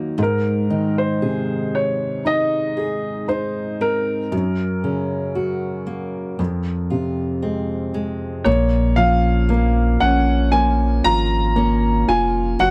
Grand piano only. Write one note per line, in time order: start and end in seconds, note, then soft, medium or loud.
0.23 0.94 A#4 medium
0.98 1.77 C5 medium
1.75 2.23 C#5 medium
2.27 3.26 D#5 medium
3.29 3.82 C5 medium
3.81 7.91 A#4 medium
8.44 8.99 C#5 medium
8.96 9.97 F5 medium
10.00 10.49 F#5 medium
10.52 11.01 G#5 medium
11.04 12.11 A#5 loud
12.09 12.62 G#5 medium
12.60 12.71 F#5 medium